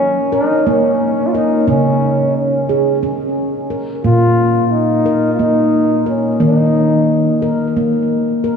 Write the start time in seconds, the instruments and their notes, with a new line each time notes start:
Already playing: handpan F#3, trombone C#4
0.32 trombone D#4, handpan A#4
0.67 handpan A#3, trombone C#4
1.27 trombone F4
1.35 trombone D#4, handpan A#4
1.68 handpan C#3 C#4, trombone C#4
2.37 trombone C#4
2.69 handpan G#4
3.03 handpan C#4
3.70 handpan A#4
4.04 handpan A#2 A#3, trombone F4
4.67 trombone F4
4.71 trombone D#4
5.06 handpan A#4
5.33 trombone F4
5.39 handpan A#3, trombone D#4
6.06 trombone C#4, handpan A#4
6.40 handpan D#3 A#3, trombone D#4
7.42 handpan A#4
7.77 handpan A#3
8.44 handpan A#4